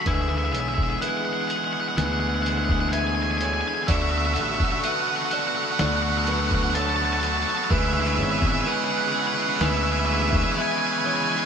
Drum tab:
HH |x-x-x-x-x-x-x-x-|x-x-x-x-x-x-x-x-|----------------|
SD |-o------o-------|--------o-------|-o------o-------|
BD |o--o-------o----|o--o-------o----|o--o-------o----|